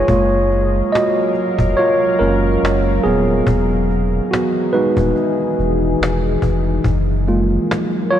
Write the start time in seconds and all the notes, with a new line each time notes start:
Already playing: F4 C#5
0.08 F#1 F#3 G#3 A#3 F4 A#4 F5, cajon bass
0.51 cajon slap
0.92 F#4 D#5, cajon slap
1.34 cajon slap
1.58 F1, cajon bass
1.76 F4 C#5, cajon slap
2.19 F#1 G#3 A#3 C#4 F4 A#4, cajon slap
2.63 F#1, cajon slap
3.03 D#1 B3 G#4, cajon slap
3.45 E1 E3 D#4 G#4, cajon bass
3.90 cajon slap
4.31 B3 F#4, cajon slap
4.73 G#3 D#4 F#4 B4, cajon slap
4.97 D#1, cajon bass
5.16 cajon slap
5.59 E1, cajon slap
6.01 E1, cajon slap
6.42 F1, cajon bass
6.84 F#1 F3 F#3 A#4, cajon bass
7.27 G#3 A#3 F4, cajon slap
7.71 cajon slap
8.10 F4 C#5, cajon slap